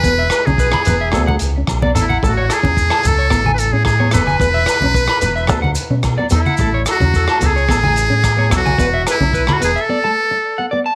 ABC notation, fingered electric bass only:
X:1
M:4/4
L:1/16
Q:1/4=110
K:A
V:1 name="Fingered electric bass" clef=bass
E,,,2 z B,,,2 z E,,,2 D,,2 C,,2 B,,,2 z2 | A,,,2 z E,,2 z C,,2 A,,,3 A,,3 =F,,,2 | E,,,2 z B,,,2 z E,,,2 D,,2 z B,,2 z E,, z | A,,,2 z E,,2 z C,,2 A,,,3 A,,3 B,,,2 |
E,,,2 z B,,,2 z E,,, z8 z |]